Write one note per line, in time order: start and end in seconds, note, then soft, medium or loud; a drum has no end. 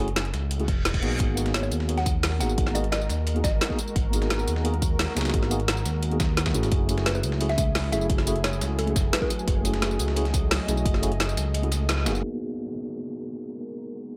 0.00 0.32 F#1 loud
0.00 0.08 G#4 loud
0.08 closed hi-hat soft
0.16 snare loud
0.16 closed hi-hat medium
0.25 closed hi-hat soft
0.34 0.70 C#2 medium
0.34 snare soft
0.34 closed hi-hat medium
0.51 closed hi-hat loud
0.51 closed hi-hat medium
0.51 reverse cymbal medium
0.58 0.64 A3 medium
0.58 0.64 C#4 medium
0.58 0.65 E4 medium
0.58 0.65 F#4 medium
0.58 0.65 G#4 medium
0.58 closed hi-hat soft
0.68 1.04 E1 medium
0.68 kick loud
0.68 closed hi-hat medium
0.85 snare loud
0.85 closed hi-hat medium
0.94 kick medium
0.94 closed hi-hat medium
1.01 1.18 B1 loud
1.01 1.34 A#3 loud
1.01 1.35 B3 medium
1.01 1.35 D#4 medium
1.01 1.35 F#4 medium
1.01 1.36 G#4 loud
1.01 closed hi-hat medium
1.11 closed hi-hat medium
1.20 1.70 G#1 loud
1.20 6.68 G#3 medium
1.20 6.68 F#4 medium
1.20 6.68 A#4 medium
1.20 kick loud
1.20 closed hi-hat medium
1.35 1.86 A#3 medium
1.35 1.86 B3 medium
1.35 1.87 D#4 medium
1.35 1.88 F#4 medium
1.35 closed hi-hat medium
1.35 tambourine medium
1.40 1.88 G#4 medium
1.46 snare medium
1.46 closed hi-hat soft
1.54 1.60 C#5 medium
1.54 snare loud
1.54 closed hi-hat medium
1.63 1.69 C#5 medium
1.63 tambourine soft
1.71 2.42 D#2 medium
1.71 closed hi-hat medium
1.71 tambourine medium
1.80 snare soft
1.88 1.97 A#3 medium
1.88 1.97 B3 medium
1.88 1.97 D#4 medium
1.88 1.98 F#4 medium
1.88 1.98 G#4 medium
1.88 closed hi-hat medium
1.88 closed hi-hat loud
1.98 2.39 F#5 medium
1.98 snare soft
1.98 closed hi-hat soft
2.06 kick loud
2.06 closed hi-hat medium
2.06 tambourine medium
2.23 snare loud
2.23 closed hi-hat loud
2.23 open hi-hat medium
2.32 snare soft
2.39 2.56 G#1 medium
2.39 2.72 A#3 medium
2.39 2.73 B3 medium
2.39 2.73 D#4 medium
2.39 2.73 F#4 medium
2.39 2.74 G#4 medium
2.39 2.61 F#5 medium
2.39 snare soft
2.39 closed hi-hat medium
2.39 tambourine medium
2.49 tambourine soft
2.58 3.08 G#1 loud
2.58 kick loud
2.58 closed hi-hat medium
2.67 snare medium
2.67 snare soft
2.74 2.83 A#3 medium
2.74 2.83 B3 medium
2.74 2.83 D#4 medium
2.74 2.84 F#4 medium
2.74 2.84 G#4 loud
2.74 2.90 D#5 medium
2.74 closed hi-hat medium
2.74 tambourine medium
2.84 closed hi-hat soft
2.92 3.13 D#5 medium
2.92 snare loud
2.92 closed hi-hat medium
3.01 tambourine soft
3.09 3.43 D#2 medium
3.09 snare soft
3.09 closed hi-hat medium
3.09 tambourine medium
3.27 closed hi-hat medium
3.34 3.40 A#3 medium
3.34 3.40 B3 medium
3.34 3.41 D#4 medium
3.34 3.41 F#4 medium
3.34 3.41 G#4 medium
3.34 closed hi-hat soft
3.44 3.60 G#1 medium
3.44 3.79 D#5 medium
3.44 kick loud
3.44 snare soft
3.44 closed hi-hat medium
3.44 tambourine medium
3.61 snare loud
3.61 closed hi-hat medium
3.69 3.78 A#3 medium
3.69 3.78 B3 medium
3.69 3.78 D#4 medium
3.69 3.78 F#4 medium
3.69 3.79 G#4 loud
3.69 kick medium
3.69 snare soft
3.79 closed hi-hat medium
3.79 tambourine medium
3.88 tambourine soft
3.96 4.46 G#1 loud
3.96 kick loud
3.96 closed hi-hat medium
4.11 4.62 A#3 medium
4.11 4.62 B3 medium
4.11 4.63 D#4 medium
4.11 4.63 F#4 medium
4.11 closed hi-hat medium
4.11 tambourine medium
4.16 4.64 G#4 medium
4.22 snare medium
4.22 closed hi-hat soft
4.30 snare loud
4.30 closed hi-hat medium
4.39 tambourine soft
4.48 5.07 D#2 medium
4.48 closed hi-hat medium
4.48 tambourine medium
4.56 snare medium
4.64 4.73 A#3 medium
4.64 4.73 B3 medium
4.64 4.73 D#4 medium
4.64 4.73 F#4 medium
4.64 4.74 G#4 medium
4.64 closed hi-hat medium
4.74 closed hi-hat soft
4.82 kick loud
4.82 closed hi-hat medium
4.82 tambourine medium
4.99 snare loud
4.99 closed hi-hat medium
4.99 open hi-hat medium
5.08 snare soft
5.15 5.32 C#2 medium
5.15 5.48 A#3 medium
5.15 5.49 B3 medium
5.15 5.49 D#4 medium
5.15 5.49 F#4 medium
5.15 5.50 G#4 medium
5.15 snare medium
5.15 closed hi-hat medium
5.15 tambourine medium
5.21 snare medium
5.21 closed hi-hat medium
5.25 snare medium
5.25 closed hi-hat medium
5.25 tambourine soft
5.30 snare medium
5.30 closed hi-hat medium
5.34 5.84 G#1 loud
5.34 kick loud
5.34 closed hi-hat medium
5.42 snare soft
5.42 snare medium
5.49 5.59 A#3 medium
5.49 5.59 B3 medium
5.49 5.59 D#4 medium
5.49 5.60 F#4 medium
5.49 5.60 G#4 loud
5.49 closed hi-hat medium
5.49 tambourine medium
5.60 closed hi-hat soft
5.68 snare loud
5.68 closed hi-hat medium
5.77 tambourine soft
5.85 6.56 D#2 medium
5.85 snare soft
5.85 closed hi-hat medium
5.85 tambourine medium
6.03 closed hi-hat medium
6.10 6.16 A#3 medium
6.10 6.16 B3 medium
6.10 6.17 D#4 medium
6.10 6.17 F#4 medium
6.10 6.17 G#4 medium
6.10 closed hi-hat soft
6.20 kick loud
6.20 snare loud
6.20 closed hi-hat medium
6.20 tambourine medium
6.37 snare soft
6.37 snare loud
6.37 closed hi-hat medium
6.46 kick medium
6.46 snare loud
6.46 closed hi-hat medium
6.53 6.70 G#1 loud
6.53 6.85 A3 medium
6.53 6.87 C#4 medium
6.53 6.87 E4 medium
6.53 6.87 F#4 medium
6.53 6.88 G#4 loud
6.53 closed hi-hat medium
6.53 tambourine medium
6.63 snare soft
6.63 closed hi-hat medium
6.63 tambourine soft
6.72 7.22 F#1 loud
6.72 12.20 F#3 medium
6.72 12.20 A3 medium
6.72 9.45 E4 medium
6.72 12.20 G#4 medium
6.72 kick loud
6.72 closed hi-hat medium
6.87 7.37 A3 medium
6.87 7.38 C#4 medium
6.87 7.39 E4 medium
6.87 7.39 F#4 medium
6.87 closed hi-hat medium
6.87 tambourine medium
6.91 7.40 G#4 medium
6.98 snare medium
6.98 closed hi-hat soft
7.06 7.12 B4 medium
7.06 snare loud
7.06 closed hi-hat medium
7.15 7.20 B4 medium
7.15 tambourine soft
7.23 7.94 C#2 medium
7.23 closed hi-hat medium
7.23 tambourine medium
7.32 snare medium
7.39 7.48 A3 medium
7.39 7.49 C#4 medium
7.39 7.49 E4 medium
7.39 7.49 F#4 medium
7.39 7.50 G#4 medium
7.39 closed hi-hat medium
7.49 7.91 E5 medium
7.49 snare soft
7.49 closed hi-hat soft
7.58 kick loud
7.58 closed hi-hat medium
7.58 tambourine medium
7.75 snare loud
7.75 closed hi-hat medium
7.75 open hi-hat medium
7.84 snare soft
7.91 8.08 F#1 medium
7.91 8.24 A3 medium
7.91 8.25 C#4 medium
7.91 8.25 E4 medium
7.91 8.25 F#4 medium
7.91 8.26 G#4 medium
7.91 8.13 E5 medium
7.91 snare soft
7.91 closed hi-hat medium
7.91 tambourine medium
8.01 tambourine soft
8.10 8.60 F#1 loud
8.10 kick loud
8.10 closed hi-hat medium
8.18 snare medium
8.18 snare soft
8.26 8.35 A3 medium
8.26 8.35 C#4 medium
8.26 8.35 E4 medium
8.26 8.36 F#4 medium
8.26 8.36 G#4 loud
8.26 closed hi-hat medium
8.26 tambourine medium
8.36 closed hi-hat soft
8.44 8.70 C#5 medium
8.44 snare loud
8.44 closed hi-hat medium
8.53 tambourine soft
8.61 8.95 C#2 medium
8.61 snare medium
8.61 closed hi-hat medium
8.61 tambourine medium
8.79 8.99 A4 loud
8.79 closed hi-hat medium
8.86 8.92 A3 medium
8.86 8.92 C#4 medium
8.86 8.92 E4 medium
8.86 8.93 F#4 medium
8.86 8.93 G#4 medium
8.86 closed hi-hat soft
8.96 9.11 F#1 medium
8.96 kick loud
8.96 snare soft
8.96 closed hi-hat medium
8.96 tambourine medium
9.13 9.20 B4 medium
9.13 snare loud
9.13 closed hi-hat medium
9.21 9.29 A3 loud
9.21 9.30 C#4 medium
9.21 9.30 E4 medium
9.21 9.30 F#4 medium
9.21 9.31 G#4 loud
9.21 9.56 B4 medium
9.21 kick medium
9.21 snare soft
9.30 closed hi-hat medium
9.30 tambourine medium
9.39 tambourine soft
9.48 9.98 F#1 loud
9.48 12.21 D#5 medium
9.48 kick loud
9.48 closed hi-hat medium
9.62 10.13 A3 medium
9.62 10.14 C#4 medium
9.62 10.15 E4 medium
9.62 10.15 F#4 medium
9.62 closed hi-hat medium
9.62 tambourine medium
9.67 10.16 G#4 medium
9.74 snare medium
9.74 closed hi-hat soft
9.82 snare loud
9.82 closed hi-hat medium
9.91 tambourine soft
9.99 10.58 C#2 medium
9.99 closed hi-hat medium
9.99 tambourine medium
10.08 snare medium
10.15 10.24 A3 medium
10.15 10.25 C#4 medium
10.15 10.25 E4 medium
10.15 10.25 F#4 medium
10.15 10.25 G#4 medium
10.15 closed hi-hat medium
10.15 closed hi-hat loud
10.25 snare soft
10.25 closed hi-hat soft
10.34 kick loud
10.34 closed hi-hat medium
10.34 tambourine medium
10.51 snare loud
10.51 closed hi-hat loud
10.51 open hi-hat medium
10.60 snare soft
10.67 10.84 B1 medium
10.67 11.00 A3 medium
10.67 11.00 C#4 medium
10.67 11.01 E4 medium
10.67 11.01 F#4 medium
10.67 11.01 G#4 medium
10.67 snare soft
10.67 closed hi-hat medium
10.67 tambourine medium
10.77 tambourine soft
10.86 11.36 F#1 loud
10.86 kick loud
10.86 closed hi-hat medium
10.94 snare soft
11.01 11.10 A3 medium
11.01 11.11 C#4 medium
11.01 11.11 E4 medium
11.01 11.11 F#4 medium
11.01 11.12 G#4 loud
11.01 closed hi-hat medium
11.01 tambourine medium
11.12 closed hi-hat soft
11.20 snare loud
11.20 closed hi-hat medium
11.29 closed hi-hat soft
11.29 tambourine soft
11.37 12.08 C#2 medium
11.37 snare soft
11.37 closed hi-hat medium
11.37 tambourine medium
11.54 closed hi-hat medium
11.54 closed hi-hat loud
11.62 11.68 A3 medium
11.62 11.68 C#4 medium
11.62 11.68 E4 medium
11.62 11.69 F#4 medium
11.62 11.69 G#4 loud
11.62 closed hi-hat soft
11.72 snare soft
11.72 closed hi-hat medium
11.72 tambourine medium
11.89 snare loud
11.89 closed hi-hat medium
11.89 closed hi-hat loud
11.98 snare soft
12.05 12.22 F#1 loud
12.05 12.20 A#3 loud
12.05 12.21 B3 medium
12.05 12.22 D#4 medium
12.05 12.24 F#4 medium
12.05 12.25 G#4 loud
12.05 snare loud
12.05 closed hi-hat medium
12.05 tambourine medium
12.15 snare soft
12.15 tambourine soft
12.21 14.17 G#3 medium
12.21 14.17 A#3 medium
12.21 14.17 B3 medium
12.21 14.17 D#4 medium
12.21 14.17 F#4 medium
12.21 14.17 A#4 medium
12.21 closed hi-hat medium
12.21 crash medium
12.21 downlifter medium
12.41 closed hi-hat medium
12.58 closed hi-hat medium
12.75 closed hi-hat medium
12.75 tambourine medium
12.92 closed hi-hat medium
13.10 closed hi-hat medium
13.10 tambourine medium
13.27 closed hi-hat medium
13.44 closed hi-hat medium
13.44 tambourine medium
13.61 closed hi-hat medium
13.79 closed hi-hat medium
13.79 tambourine medium
13.96 closed hi-hat medium
14.13 closed hi-hat medium
14.13 tambourine medium